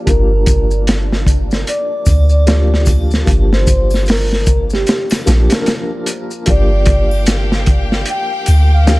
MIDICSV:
0, 0, Header, 1, 7, 480
1, 0, Start_track
1, 0, Key_signature, -2, "minor"
1, 0, Tempo, 800000
1, 44, Time_signature, 4, 2, 24, 8
1, 5398, End_track
2, 0, Start_track
2, 0, Title_t, "Violin section"
2, 0, Program_c, 0, 48
2, 3885, Note_on_c, 0, 67, 86
2, 3887, Note_on_c, 0, 77, 78
2, 3888, Note_on_c, 0, 79, 91
2, 5398, Note_off_c, 0, 67, 0
2, 5398, Note_off_c, 0, 77, 0
2, 5398, Note_off_c, 0, 79, 0
2, 5398, End_track
3, 0, Start_track
3, 0, Title_t, "Soft synth lead"
3, 0, Program_c, 1, 80
3, 50, Note_on_c, 1, 70, 97
3, 488, Note_off_c, 1, 70, 0
3, 1007, Note_on_c, 1, 74, 91
3, 1346, Note_off_c, 1, 74, 0
3, 1386, Note_on_c, 1, 74, 90
3, 1695, Note_off_c, 1, 74, 0
3, 2113, Note_on_c, 1, 72, 89
3, 2418, Note_off_c, 1, 72, 0
3, 2446, Note_on_c, 1, 70, 85
3, 2785, Note_off_c, 1, 70, 0
3, 2836, Note_on_c, 1, 67, 90
3, 3043, Note_off_c, 1, 67, 0
3, 3897, Note_on_c, 1, 74, 102
3, 4332, Note_off_c, 1, 74, 0
3, 4856, Note_on_c, 1, 79, 99
3, 5190, Note_off_c, 1, 79, 0
3, 5242, Note_on_c, 1, 77, 91
3, 5398, Note_off_c, 1, 77, 0
3, 5398, End_track
4, 0, Start_track
4, 0, Title_t, "Synth texture"
4, 0, Program_c, 2, 99
4, 0, Note_on_c, 2, 62, 79
4, 3895, Note_off_c, 2, 62, 0
4, 5398, End_track
5, 0, Start_track
5, 0, Title_t, "Felt piano"
5, 0, Program_c, 3, 0
5, 0, Control_c, 3, 64, 127
5, 0, Note_on_c, 3, 53, 70
5, 0, Note_on_c, 3, 58, 67
5, 0, Note_on_c, 3, 62, 66
5, 0, Note_on_c, 3, 67, 79
5, 35, Note_off_c, 3, 53, 0
5, 35, Note_on_c, 3, 53, 67
5, 40, Note_off_c, 3, 58, 0
5, 40, Note_on_c, 3, 58, 64
5, 49, Note_off_c, 3, 62, 0
5, 49, Note_on_c, 3, 62, 65
5, 53, Note_off_c, 3, 67, 0
5, 53, Note_on_c, 3, 67, 72
5, 1457, Note_off_c, 3, 53, 0
5, 1459, Note_off_c, 3, 58, 0
5, 1463, Note_off_c, 3, 62, 0
5, 1466, Note_off_c, 3, 67, 0
5, 1480, Note_on_c, 3, 53, 77
5, 1483, Note_on_c, 3, 58, 67
5, 1485, Note_on_c, 3, 62, 65
5, 1488, Note_on_c, 3, 67, 78
5, 1939, Note_off_c, 3, 53, 0
5, 1940, Note_off_c, 3, 58, 0
5, 1941, Note_off_c, 3, 62, 0
5, 1943, Note_off_c, 3, 67, 0
5, 1956, Note_on_c, 3, 53, 69
5, 1960, Note_on_c, 3, 58, 60
5, 1965, Note_on_c, 3, 62, 58
5, 1969, Note_on_c, 3, 67, 72
5, 3141, Note_off_c, 3, 53, 0
5, 3143, Note_off_c, 3, 58, 0
5, 3145, Note_off_c, 3, 62, 0
5, 3147, Note_off_c, 3, 67, 0
5, 3156, Note_on_c, 3, 53, 81
5, 3157, Note_on_c, 3, 58, 74
5, 3161, Note_on_c, 3, 62, 74
5, 3164, Note_on_c, 3, 67, 87
5, 3269, Note_off_c, 3, 53, 0
5, 3269, Note_off_c, 3, 58, 0
5, 3271, Note_off_c, 3, 62, 0
5, 3273, Note_off_c, 3, 67, 0
5, 3297, Note_on_c, 3, 53, 89
5, 3301, Note_on_c, 3, 58, 87
5, 3305, Note_on_c, 3, 62, 88
5, 3311, Note_on_c, 3, 70, 108
5, 3856, Note_off_c, 3, 53, 0
5, 3858, Note_off_c, 3, 58, 0
5, 3860, Note_off_c, 3, 62, 0
5, 3863, Note_off_c, 3, 70, 0
5, 3876, Note_on_c, 3, 53, 69
5, 3882, Note_on_c, 3, 58, 62
5, 3887, Note_on_c, 3, 62, 64
5, 3892, Note_on_c, 3, 67, 75
5, 3893, Control_c, 3, 64, 0
5, 3987, Control_c, 3, 64, 127
5, 5297, Note_off_c, 3, 53, 0
5, 5300, Note_off_c, 3, 58, 0
5, 5302, Note_off_c, 3, 62, 0
5, 5305, Note_off_c, 3, 67, 0
5, 5320, Note_on_c, 3, 53, 74
5, 5322, Note_on_c, 3, 58, 66
5, 5326, Note_on_c, 3, 62, 68
5, 5328, Note_on_c, 3, 67, 80
5, 5398, Note_off_c, 3, 53, 0
5, 5398, Note_off_c, 3, 58, 0
5, 5398, Note_off_c, 3, 62, 0
5, 5398, Note_off_c, 3, 67, 0
5, 5398, End_track
6, 0, Start_track
6, 0, Title_t, "808-style bass"
6, 0, Program_c, 4, 38
6, 45, Note_on_c, 4, 31, 99
6, 986, Note_off_c, 4, 31, 0
6, 1240, Note_on_c, 4, 38, 88
6, 1944, Note_off_c, 4, 38, 0
6, 1965, Note_on_c, 4, 31, 104
6, 2906, Note_off_c, 4, 31, 0
6, 3165, Note_on_c, 4, 34, 101
6, 3290, Note_off_c, 4, 34, 0
6, 3888, Note_on_c, 4, 31, 94
6, 4828, Note_off_c, 4, 31, 0
6, 5090, Note_on_c, 4, 38, 94
6, 5398, Note_off_c, 4, 38, 0
6, 5398, End_track
7, 0, Start_track
7, 0, Title_t, "Drums"
7, 42, Note_on_c, 9, 42, 80
7, 43, Note_on_c, 9, 36, 103
7, 46, Note_on_c, 9, 82, 35
7, 102, Note_off_c, 9, 42, 0
7, 103, Note_off_c, 9, 36, 0
7, 106, Note_off_c, 9, 82, 0
7, 278, Note_on_c, 9, 42, 69
7, 283, Note_on_c, 9, 36, 99
7, 285, Note_on_c, 9, 82, 78
7, 338, Note_off_c, 9, 42, 0
7, 343, Note_off_c, 9, 36, 0
7, 345, Note_off_c, 9, 82, 0
7, 425, Note_on_c, 9, 82, 50
7, 485, Note_off_c, 9, 82, 0
7, 524, Note_on_c, 9, 42, 79
7, 528, Note_on_c, 9, 82, 37
7, 533, Note_on_c, 9, 38, 105
7, 584, Note_off_c, 9, 42, 0
7, 588, Note_off_c, 9, 82, 0
7, 593, Note_off_c, 9, 38, 0
7, 675, Note_on_c, 9, 38, 51
7, 735, Note_off_c, 9, 38, 0
7, 759, Note_on_c, 9, 36, 92
7, 765, Note_on_c, 9, 42, 62
7, 765, Note_on_c, 9, 82, 72
7, 819, Note_off_c, 9, 36, 0
7, 825, Note_off_c, 9, 42, 0
7, 825, Note_off_c, 9, 82, 0
7, 907, Note_on_c, 9, 82, 44
7, 916, Note_on_c, 9, 38, 53
7, 967, Note_off_c, 9, 82, 0
7, 976, Note_off_c, 9, 38, 0
7, 1002, Note_on_c, 9, 82, 36
7, 1004, Note_on_c, 9, 42, 77
7, 1062, Note_off_c, 9, 82, 0
7, 1064, Note_off_c, 9, 42, 0
7, 1235, Note_on_c, 9, 81, 67
7, 1235, Note_on_c, 9, 82, 88
7, 1240, Note_on_c, 9, 36, 69
7, 1245, Note_on_c, 9, 42, 54
7, 1295, Note_off_c, 9, 81, 0
7, 1295, Note_off_c, 9, 82, 0
7, 1300, Note_off_c, 9, 36, 0
7, 1305, Note_off_c, 9, 42, 0
7, 1377, Note_on_c, 9, 82, 42
7, 1437, Note_off_c, 9, 82, 0
7, 1480, Note_on_c, 9, 82, 39
7, 1482, Note_on_c, 9, 42, 67
7, 1489, Note_on_c, 9, 38, 96
7, 1540, Note_off_c, 9, 82, 0
7, 1542, Note_off_c, 9, 42, 0
7, 1549, Note_off_c, 9, 38, 0
7, 1643, Note_on_c, 9, 38, 49
7, 1703, Note_off_c, 9, 38, 0
7, 1714, Note_on_c, 9, 82, 82
7, 1716, Note_on_c, 9, 81, 77
7, 1723, Note_on_c, 9, 36, 87
7, 1728, Note_on_c, 9, 42, 57
7, 1774, Note_off_c, 9, 82, 0
7, 1776, Note_off_c, 9, 81, 0
7, 1783, Note_off_c, 9, 36, 0
7, 1788, Note_off_c, 9, 42, 0
7, 1865, Note_on_c, 9, 82, 45
7, 1882, Note_on_c, 9, 38, 47
7, 1925, Note_off_c, 9, 82, 0
7, 1942, Note_off_c, 9, 38, 0
7, 1959, Note_on_c, 9, 82, 40
7, 1965, Note_on_c, 9, 36, 114
7, 1968, Note_on_c, 9, 42, 89
7, 2019, Note_off_c, 9, 82, 0
7, 2025, Note_off_c, 9, 36, 0
7, 2028, Note_off_c, 9, 42, 0
7, 2116, Note_on_c, 9, 38, 54
7, 2176, Note_off_c, 9, 38, 0
7, 2201, Note_on_c, 9, 82, 86
7, 2205, Note_on_c, 9, 36, 91
7, 2206, Note_on_c, 9, 42, 68
7, 2261, Note_off_c, 9, 82, 0
7, 2265, Note_off_c, 9, 36, 0
7, 2266, Note_off_c, 9, 42, 0
7, 2342, Note_on_c, 9, 82, 51
7, 2344, Note_on_c, 9, 81, 56
7, 2365, Note_on_c, 9, 38, 35
7, 2402, Note_off_c, 9, 82, 0
7, 2404, Note_off_c, 9, 81, 0
7, 2425, Note_off_c, 9, 38, 0
7, 2435, Note_on_c, 9, 82, 37
7, 2447, Note_on_c, 9, 46, 69
7, 2460, Note_on_c, 9, 38, 109
7, 2495, Note_off_c, 9, 82, 0
7, 2507, Note_off_c, 9, 46, 0
7, 2520, Note_off_c, 9, 38, 0
7, 2595, Note_on_c, 9, 38, 45
7, 2655, Note_off_c, 9, 38, 0
7, 2678, Note_on_c, 9, 82, 93
7, 2680, Note_on_c, 9, 42, 67
7, 2682, Note_on_c, 9, 36, 92
7, 2738, Note_off_c, 9, 82, 0
7, 2740, Note_off_c, 9, 42, 0
7, 2742, Note_off_c, 9, 36, 0
7, 2820, Note_on_c, 9, 82, 51
7, 2841, Note_on_c, 9, 38, 38
7, 2880, Note_off_c, 9, 82, 0
7, 2901, Note_off_c, 9, 38, 0
7, 2919, Note_on_c, 9, 82, 37
7, 2920, Note_on_c, 9, 42, 81
7, 2934, Note_on_c, 9, 38, 113
7, 2979, Note_off_c, 9, 82, 0
7, 2980, Note_off_c, 9, 42, 0
7, 2994, Note_off_c, 9, 38, 0
7, 3058, Note_on_c, 9, 81, 60
7, 3065, Note_on_c, 9, 42, 82
7, 3074, Note_on_c, 9, 38, 91
7, 3118, Note_off_c, 9, 81, 0
7, 3125, Note_off_c, 9, 42, 0
7, 3134, Note_off_c, 9, 38, 0
7, 3161, Note_on_c, 9, 82, 88
7, 3163, Note_on_c, 9, 42, 71
7, 3173, Note_on_c, 9, 38, 90
7, 3221, Note_off_c, 9, 82, 0
7, 3223, Note_off_c, 9, 42, 0
7, 3233, Note_off_c, 9, 38, 0
7, 3299, Note_on_c, 9, 42, 79
7, 3305, Note_on_c, 9, 82, 53
7, 3314, Note_on_c, 9, 38, 103
7, 3359, Note_off_c, 9, 42, 0
7, 3365, Note_off_c, 9, 82, 0
7, 3374, Note_off_c, 9, 38, 0
7, 3398, Note_on_c, 9, 42, 74
7, 3398, Note_on_c, 9, 82, 41
7, 3407, Note_on_c, 9, 38, 101
7, 3458, Note_off_c, 9, 42, 0
7, 3458, Note_off_c, 9, 82, 0
7, 3467, Note_off_c, 9, 38, 0
7, 3638, Note_on_c, 9, 42, 78
7, 3642, Note_on_c, 9, 82, 91
7, 3698, Note_off_c, 9, 42, 0
7, 3702, Note_off_c, 9, 82, 0
7, 3785, Note_on_c, 9, 82, 55
7, 3845, Note_off_c, 9, 82, 0
7, 3875, Note_on_c, 9, 42, 94
7, 3886, Note_on_c, 9, 36, 106
7, 3935, Note_off_c, 9, 42, 0
7, 3946, Note_off_c, 9, 36, 0
7, 4113, Note_on_c, 9, 42, 74
7, 4121, Note_on_c, 9, 36, 93
7, 4173, Note_off_c, 9, 42, 0
7, 4181, Note_off_c, 9, 36, 0
7, 4268, Note_on_c, 9, 81, 62
7, 4328, Note_off_c, 9, 81, 0
7, 4357, Note_on_c, 9, 82, 83
7, 4359, Note_on_c, 9, 42, 94
7, 4367, Note_on_c, 9, 38, 101
7, 4417, Note_off_c, 9, 82, 0
7, 4419, Note_off_c, 9, 42, 0
7, 4427, Note_off_c, 9, 38, 0
7, 4512, Note_on_c, 9, 38, 57
7, 4572, Note_off_c, 9, 38, 0
7, 4598, Note_on_c, 9, 42, 71
7, 4604, Note_on_c, 9, 36, 97
7, 4658, Note_off_c, 9, 42, 0
7, 4664, Note_off_c, 9, 36, 0
7, 4752, Note_on_c, 9, 38, 53
7, 4812, Note_off_c, 9, 38, 0
7, 4833, Note_on_c, 9, 42, 82
7, 4893, Note_off_c, 9, 42, 0
7, 5076, Note_on_c, 9, 42, 60
7, 5086, Note_on_c, 9, 81, 81
7, 5136, Note_off_c, 9, 42, 0
7, 5146, Note_off_c, 9, 81, 0
7, 5324, Note_on_c, 9, 42, 73
7, 5324, Note_on_c, 9, 82, 76
7, 5325, Note_on_c, 9, 38, 114
7, 5384, Note_off_c, 9, 42, 0
7, 5384, Note_off_c, 9, 82, 0
7, 5385, Note_off_c, 9, 38, 0
7, 5398, End_track
0, 0, End_of_file